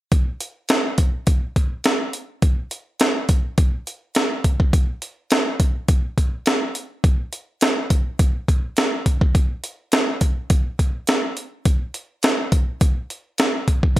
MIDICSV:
0, 0, Header, 1, 2, 480
1, 0, Start_track
1, 0, Tempo, 576923
1, 98, Time_signature, 4, 2, 24, 8
1, 11645, End_track
2, 0, Start_track
2, 0, Title_t, "Drums"
2, 98, Note_on_c, 9, 36, 110
2, 98, Note_on_c, 9, 42, 69
2, 181, Note_off_c, 9, 36, 0
2, 181, Note_off_c, 9, 42, 0
2, 337, Note_on_c, 9, 42, 73
2, 420, Note_off_c, 9, 42, 0
2, 572, Note_on_c, 9, 42, 93
2, 582, Note_on_c, 9, 38, 121
2, 655, Note_off_c, 9, 42, 0
2, 666, Note_off_c, 9, 38, 0
2, 814, Note_on_c, 9, 42, 87
2, 817, Note_on_c, 9, 36, 97
2, 897, Note_off_c, 9, 42, 0
2, 900, Note_off_c, 9, 36, 0
2, 1054, Note_on_c, 9, 42, 73
2, 1058, Note_on_c, 9, 36, 98
2, 1137, Note_off_c, 9, 42, 0
2, 1141, Note_off_c, 9, 36, 0
2, 1299, Note_on_c, 9, 36, 73
2, 1299, Note_on_c, 9, 42, 53
2, 1382, Note_off_c, 9, 36, 0
2, 1383, Note_off_c, 9, 42, 0
2, 1532, Note_on_c, 9, 42, 86
2, 1544, Note_on_c, 9, 38, 124
2, 1616, Note_off_c, 9, 42, 0
2, 1627, Note_off_c, 9, 38, 0
2, 1775, Note_on_c, 9, 42, 70
2, 1858, Note_off_c, 9, 42, 0
2, 2016, Note_on_c, 9, 42, 69
2, 2017, Note_on_c, 9, 36, 106
2, 2099, Note_off_c, 9, 42, 0
2, 2100, Note_off_c, 9, 36, 0
2, 2255, Note_on_c, 9, 42, 68
2, 2339, Note_off_c, 9, 42, 0
2, 2493, Note_on_c, 9, 42, 83
2, 2503, Note_on_c, 9, 38, 107
2, 2576, Note_off_c, 9, 42, 0
2, 2586, Note_off_c, 9, 38, 0
2, 2735, Note_on_c, 9, 42, 89
2, 2737, Note_on_c, 9, 36, 95
2, 2818, Note_off_c, 9, 42, 0
2, 2820, Note_off_c, 9, 36, 0
2, 2976, Note_on_c, 9, 42, 75
2, 2978, Note_on_c, 9, 36, 106
2, 3059, Note_off_c, 9, 42, 0
2, 3061, Note_off_c, 9, 36, 0
2, 3220, Note_on_c, 9, 42, 58
2, 3304, Note_off_c, 9, 42, 0
2, 3452, Note_on_c, 9, 42, 84
2, 3464, Note_on_c, 9, 38, 109
2, 3535, Note_off_c, 9, 42, 0
2, 3547, Note_off_c, 9, 38, 0
2, 3697, Note_on_c, 9, 42, 78
2, 3698, Note_on_c, 9, 36, 79
2, 3780, Note_off_c, 9, 42, 0
2, 3781, Note_off_c, 9, 36, 0
2, 3826, Note_on_c, 9, 36, 88
2, 3909, Note_off_c, 9, 36, 0
2, 3938, Note_on_c, 9, 36, 110
2, 3939, Note_on_c, 9, 42, 78
2, 4021, Note_off_c, 9, 36, 0
2, 4022, Note_off_c, 9, 42, 0
2, 4176, Note_on_c, 9, 42, 72
2, 4259, Note_off_c, 9, 42, 0
2, 4414, Note_on_c, 9, 42, 90
2, 4425, Note_on_c, 9, 38, 117
2, 4497, Note_off_c, 9, 42, 0
2, 4508, Note_off_c, 9, 38, 0
2, 4656, Note_on_c, 9, 42, 86
2, 4657, Note_on_c, 9, 36, 91
2, 4739, Note_off_c, 9, 42, 0
2, 4740, Note_off_c, 9, 36, 0
2, 4895, Note_on_c, 9, 42, 76
2, 4897, Note_on_c, 9, 36, 107
2, 4979, Note_off_c, 9, 42, 0
2, 4980, Note_off_c, 9, 36, 0
2, 5139, Note_on_c, 9, 36, 72
2, 5140, Note_on_c, 9, 42, 55
2, 5222, Note_off_c, 9, 36, 0
2, 5223, Note_off_c, 9, 42, 0
2, 5373, Note_on_c, 9, 42, 90
2, 5385, Note_on_c, 9, 38, 126
2, 5457, Note_off_c, 9, 42, 0
2, 5468, Note_off_c, 9, 38, 0
2, 5616, Note_on_c, 9, 42, 74
2, 5699, Note_off_c, 9, 42, 0
2, 5857, Note_on_c, 9, 36, 112
2, 5858, Note_on_c, 9, 42, 64
2, 5940, Note_off_c, 9, 36, 0
2, 5941, Note_off_c, 9, 42, 0
2, 6095, Note_on_c, 9, 42, 64
2, 6178, Note_off_c, 9, 42, 0
2, 6333, Note_on_c, 9, 42, 88
2, 6343, Note_on_c, 9, 38, 106
2, 6416, Note_off_c, 9, 42, 0
2, 6427, Note_off_c, 9, 38, 0
2, 6575, Note_on_c, 9, 42, 93
2, 6576, Note_on_c, 9, 36, 91
2, 6658, Note_off_c, 9, 42, 0
2, 6660, Note_off_c, 9, 36, 0
2, 6816, Note_on_c, 9, 42, 80
2, 6817, Note_on_c, 9, 36, 105
2, 6899, Note_off_c, 9, 42, 0
2, 6901, Note_off_c, 9, 36, 0
2, 7059, Note_on_c, 9, 36, 79
2, 7062, Note_on_c, 9, 42, 51
2, 7142, Note_off_c, 9, 36, 0
2, 7145, Note_off_c, 9, 42, 0
2, 7294, Note_on_c, 9, 42, 83
2, 7306, Note_on_c, 9, 38, 125
2, 7377, Note_off_c, 9, 42, 0
2, 7389, Note_off_c, 9, 38, 0
2, 7538, Note_on_c, 9, 36, 79
2, 7538, Note_on_c, 9, 42, 70
2, 7621, Note_off_c, 9, 36, 0
2, 7621, Note_off_c, 9, 42, 0
2, 7665, Note_on_c, 9, 36, 96
2, 7749, Note_off_c, 9, 36, 0
2, 7778, Note_on_c, 9, 36, 100
2, 7779, Note_on_c, 9, 42, 69
2, 7861, Note_off_c, 9, 36, 0
2, 7862, Note_off_c, 9, 42, 0
2, 8017, Note_on_c, 9, 42, 70
2, 8100, Note_off_c, 9, 42, 0
2, 8252, Note_on_c, 9, 42, 81
2, 8263, Note_on_c, 9, 38, 119
2, 8335, Note_off_c, 9, 42, 0
2, 8346, Note_off_c, 9, 38, 0
2, 8494, Note_on_c, 9, 42, 81
2, 8496, Note_on_c, 9, 36, 87
2, 8578, Note_off_c, 9, 42, 0
2, 8580, Note_off_c, 9, 36, 0
2, 8735, Note_on_c, 9, 42, 86
2, 8737, Note_on_c, 9, 36, 101
2, 8818, Note_off_c, 9, 42, 0
2, 8821, Note_off_c, 9, 36, 0
2, 8979, Note_on_c, 9, 36, 69
2, 8980, Note_on_c, 9, 42, 55
2, 9062, Note_off_c, 9, 36, 0
2, 9063, Note_off_c, 9, 42, 0
2, 9213, Note_on_c, 9, 42, 81
2, 9225, Note_on_c, 9, 38, 110
2, 9296, Note_off_c, 9, 42, 0
2, 9308, Note_off_c, 9, 38, 0
2, 9458, Note_on_c, 9, 42, 68
2, 9541, Note_off_c, 9, 42, 0
2, 9696, Note_on_c, 9, 42, 70
2, 9697, Note_on_c, 9, 36, 97
2, 9779, Note_off_c, 9, 42, 0
2, 9781, Note_off_c, 9, 36, 0
2, 9936, Note_on_c, 9, 42, 73
2, 10019, Note_off_c, 9, 42, 0
2, 10174, Note_on_c, 9, 42, 93
2, 10185, Note_on_c, 9, 38, 112
2, 10257, Note_off_c, 9, 42, 0
2, 10268, Note_off_c, 9, 38, 0
2, 10417, Note_on_c, 9, 42, 92
2, 10418, Note_on_c, 9, 36, 101
2, 10500, Note_off_c, 9, 42, 0
2, 10501, Note_off_c, 9, 36, 0
2, 10658, Note_on_c, 9, 42, 80
2, 10659, Note_on_c, 9, 36, 106
2, 10741, Note_off_c, 9, 42, 0
2, 10742, Note_off_c, 9, 36, 0
2, 10901, Note_on_c, 9, 42, 55
2, 10984, Note_off_c, 9, 42, 0
2, 11134, Note_on_c, 9, 42, 85
2, 11146, Note_on_c, 9, 38, 121
2, 11217, Note_off_c, 9, 42, 0
2, 11229, Note_off_c, 9, 38, 0
2, 11379, Note_on_c, 9, 42, 72
2, 11380, Note_on_c, 9, 36, 75
2, 11462, Note_off_c, 9, 42, 0
2, 11463, Note_off_c, 9, 36, 0
2, 11508, Note_on_c, 9, 36, 89
2, 11591, Note_off_c, 9, 36, 0
2, 11619, Note_on_c, 9, 36, 103
2, 11645, Note_off_c, 9, 36, 0
2, 11645, End_track
0, 0, End_of_file